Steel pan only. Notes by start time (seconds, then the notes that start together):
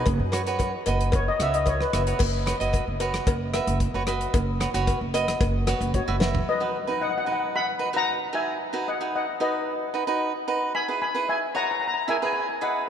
Already playing: F#4
1.15 C#5
1.28 D#5
1.42 E5
1.55 D#5
1.68 C#5
1.81 B4
5.95 F#4 C#5
6.49 B4 D#5
7.01 D#5 F#5
7.10 F#5
7.18 F#5
7.25 F#5
7.32 F#5
7.39 F#5
7.56 F#5 B5
7.97 F#5 A#5
8.35 E5 G#5
8.88 D#5 F#5
9.16 D#5 F#5
9.41 B4 D#5
10.75 G#5 B5
11.02 G#5 B5
11.29 E5 G#5
11.56 F#5 A#5
11.63 A#5
11.71 A#5
11.80 A#5
11.88 A#5
11.94 A#5
12.09 E5 G#5
12.17 G#5
12.25 G#5
12.33 G#5
12.40 G#5
12.49 G#5
12.62 D#5 F#5